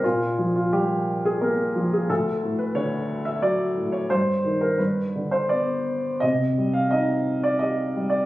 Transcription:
X:1
M:3/4
L:1/16
Q:1/4=87
K:Cm
V:1 name="Upright piano"
F3 F G3 A B3 A | =A3 =B _d3 =e =d3 _d | c3 B =B3 c d4 | e3 f e3 d e3 d |]
V:2 name="Upright piano" clef=bass
B,,2 F,2 G,4 B,2 F,2 | D,,2 =A,,2 D,4 ^F,2 A,,2 | G,,2 E,2 G,,2 D,2 =B,4 | C,2 G,2 E4 G2 G,2 |]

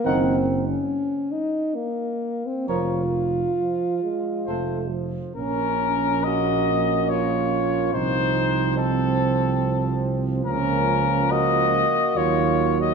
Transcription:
X:1
M:3/4
L:1/16
Q:1/4=70
K:Bbm
V:1 name="Trumpet"
g2 z8 z2 | d2 z6 c2 z2 | B4 e4 d4 | c4 =A6 z2 |
B4 e4 d3 e |]
V:2 name="Flugelhorn"
B2 z8 z2 | B2 z6 =A2 z2 | D4 G4 F4 | E4 C6 z2 |
D4 G4 F3 G |]
V:3 name="French horn"
C3 D3 E2 B,3 C | F8- F2 z2 | D12 | C12 |
B,12 |]
V:4 name="Trombone" clef=bass
E,2 z8 z2 | F,2 z2 F,2 A,2 =A,2 F,2 | B,12 | F,12- |
F,6 z2 G,4 |]
V:5 name="Tuba" clef=bass
G,,,4 z8 | F,,,4 z4 F,,,4 | B,,,12 | C,,12 |
D,,6 z2 E,,4 |]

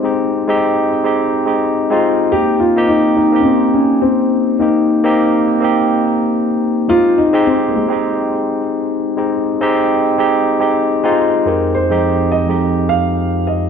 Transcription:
X:1
M:4/4
L:1/16
Q:"Swing 16ths" 1/4=105
K:Fm
V:1 name="Grand piano"
C6 z8 z2 | G2 F2 E2 E3/2 D/2 C2 D2 C4 | E6 z8 z2 | F2 E2 C3/2 B,/2 A,8- A,2- |
A,12 z4 | B2 c4 e4 f4 e2 |]
V:2 name="Tine electric piano"
[A,CEG]3 [A,CEG]4 [A,CEG]3 [A,CEG]3 [A,CEF]3 | [B,CEG]3 [B,CEG]4 [B,CEG]8- [B,CEG] | [B,CEG]3 [B,CEG]4 [B,CEG]8- [B,CEG] | [A,CEG]3 [A,CEG]4 [A,CEG]8- [A,CEG] |
[A,CEG]3 [A,CEG]4 [A,CEG]3 [A,CEG]3 [A,CEF]3 | [F,,A,CEG]3 [F,,A,CEG]4 [F,,A,CEG]8- [F,,A,CEG] |]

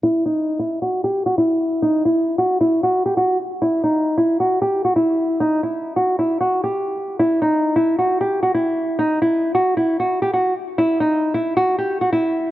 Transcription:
X:1
M:4/4
L:1/16
Q:1/4=134
K:Em
V:1 name="Nylon-string guitar"
E2 ^D3 E2 F2 G2 F E4 | ^D2 E3 F2 E2 F2 G F2 z2 | E2 ^D3 E2 F2 G2 F E4 | ^D2 E3 F2 E2 F2 G4- G |
E2 ^D3 E2 F2 G2 F E4 | ^D2 E3 F2 E2 F2 G F2 z2 | E2 ^D3 E2 F2 G2 F E4 |]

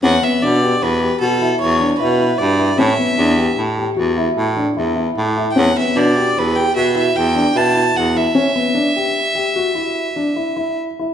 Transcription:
X:1
M:7/4
L:1/16
Q:1/4=151
K:Edor
V:1 name="Violin"
f2 e2 d4 B4 A4 c4 B4 d4 | e8 z16 z3 z/2 g/2 | f2 e2 d4 B2 g2 e2 e2 g4 a4 f2 e2- | e24 z4 |]
V:2 name="Grand piano"
C2 B,2 D2 G4 G2 F2 E4 D2 E2 E4 E2 | C2 B,2 D2 G4 G2 F2 E4 D2 E2 E4 E2 | C2 B,2 D2 G4 G2 F2 E4 D2 E2 E4 E2 | C2 B,2 D2 G4 G2 F2 E4 D2 E2 E4 E2 |]
V:3 name="Baritone saxophone" clef=bass
E,,2 z2 B,,4 E,,4 B,,4 E,,4 B,,4 G,,4 | A,,2 z2 E,,4 A,,4 E,,4 A,,4 E,,4 A,,4 | E,,2 z2 B,,4 E,,4 B,,4 E,,4 B,,4 E,,4 | z24 z4 |]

